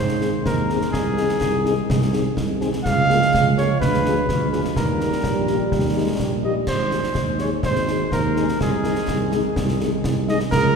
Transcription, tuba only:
Already playing: G#2
0.46 D#2
0.93 C2
1.42 C2
1.90 C2
2.38 C2
2.86 C#2
3.33 C#2
3.82 D2
4.29 D2
4.77 D#2
5.25 A#1
5.72 D#2
6.20 A#1
6.69 G#1
7.16 D#2
7.64 G#1
8.12 D#2
8.61 C2
9.09 C2
9.58 C2
10.05 C2
10.53 C#2

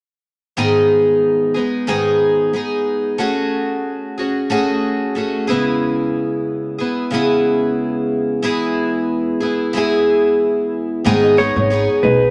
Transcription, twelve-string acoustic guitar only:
0.57 G#2 D#3 G#3 B3 D#4 G#4
1.54 G#3 B3 D#4 G#4
1.87 G#2 D#3 G#3 B3 D#4 G#4
2.53 G#3 B3 D#4 G#4
3.18 A3 C#4 F#4 G#4
4.18 C#4 F#4 G#4
4.50 A3 C#4 F#4 G#4
5.15 A3 C#4 F#4 G#4
5.47 G#3 B3 E4 G#4
5.52 C#3
6.78 B3 E4 G#4
7.11 C#3 G#3 B3 E4
7.15 G#4
8.42 E3 G#3 B3 E4 G#4
9.41 B3 E4 G#4
9.73 E3 G#3 B3 E4
9.78 G#4
11.05 G#2 D#3 G#3 B3 D#4 G#4
11.37 G#3 B3 D#4 G#4
11.70 G#3 B3 D#4 G#4

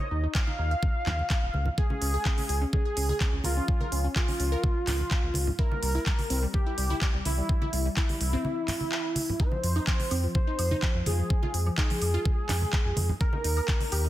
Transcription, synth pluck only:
0.11 D#4
0.23 D#4
0.35 D#5
0.47 D#4
0.59 D#4
0.71 F5
1.78 G#4
1.90 C#4
2.02 C#4
2.14 G#4
2.25 C#4
2.38 C#4
2.49 G#4
2.62 C#4
2.73 C#4
2.85 G#4
2.97 C#4
3.09 G#4
3.21 C#4
3.33 C#4
3.44 A#4
3.57 C#4
3.68 C#4
3.81 A#4
3.92 C#4
4.04 C#4
4.16 G#4
4.28 C#4
4.40 C#4
4.52 A#4
5.59 E4
5.71 G3
5.83 G3
5.95 E4
6.06 G3
6.19 G3
6.30 C4
6.43 G3
6.54 G3
6.66 E4
6.78 G3
6.90 E4
7.02 G3
7.14 G3
7.26 E4
7.38 G3
7.49 G3
7.62 E4
7.73 G3
7.85 G3
7.97 E4
8.09 G3
8.21 G3
8.33 C4
9.40 D#4
9.52 F3
9.64 F3
9.76 D#4
9.87 F3
10.00 F3
10.11 C4
10.23 F3
10.35 F3
10.47 D#4
10.59 F3
10.71 D#4
10.83 F3
10.95 F3
11.06 F4
11.19 F3
11.30 F3
11.43 F4
11.54 F3
11.66 F3
11.78 D#4
11.90 F3
12.02 F3
12.14 F4
13.21 A#4
13.33 D#4
13.44 D#4
13.57 A#4
13.68 D#4
13.81 D#4
13.92 G4
14.04 D#4

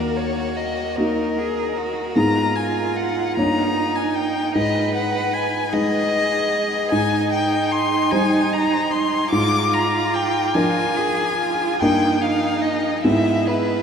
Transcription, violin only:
Already playing: A#4
0.17 C#5
0.56 D#5
0.96 A#4
2.16 A#5
2.56 G#5
2.96 F#5
3.36 A#5
3.96 G#5
4.15 G5
4.55 D#5
4.94 F#5
5.34 G#5
5.73 D#5
6.92 G#5
7.32 G5
7.71 C6
8.11 G#5
8.53 A#5
8.91 C6
9.31 D6
9.73 A#5
10.14 G5
10.55 G#5
11.80 G5
12.21 F5
12.62 D#5
13.03 E5
13.47 B4

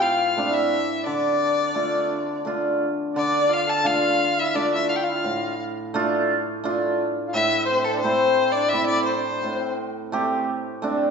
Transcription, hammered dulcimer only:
Already playing: A2
0.37 A3 C4 D4
1.06 D3
1.74 A3 D4 F4
2.45 A3 D4 F4
3.16 D3
3.85 A3 D4 F4
4.54 A3 D4 F4
5.24 A2
5.94 A3 D4 F4
6.64 A3 D4 F4
7.34 A2
8.04 A3 C4 E4
8.73 A3 C4 E4
9.43 A2
10.12 A3 C4 G4
10.82 A3 C4 D4

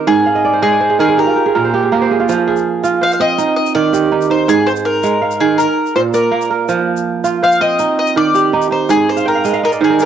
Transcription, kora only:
Already playing: D#3 C4 D#4 F4 G4 A#4
0.07 G#2
0.26 F5
0.35 D#5
0.45 D5
0.53 C5
0.62 G#3 D#5
0.71 D5
0.81 C5
0.90 G#4
0.99 D#3 A#4
1.09 G#4
1.17 G4
1.27 F4
1.36 G4
1.46 G#4
1.55 A#2 A#4
1.64 C5
1.74 G4
1.83 G#4
1.92 A#3 A#4
2.02 C5
2.11 G#4
2.20 F4
2.29 F3
2.47 G#4
2.84 F4
3.01 C5
3.20 C4
3.38 D#4
3.75 D#3
3.93 G4
4.12 D#4
4.30 D#4
4.48 G#2
4.66 C5
5.04 G#3
5.22 F5
5.41 D#3
5.59 A#4
5.96 A#2
6.14 D5
6.31 A#3
6.50 A#4
6.69 F3
7.24 F4
7.43 C5
7.61 C4
7.79 D#4
8.16 D#3
8.35 G4
8.53 D#4
8.71 D#4
8.89 G#2
9.16 F5
9.25 G5
9.35 F5
9.44 G#3 D#5
9.53 F5
9.63 D#5
9.72 D5
9.81 D#3 C5
9.90 A#4
10.00 G#4

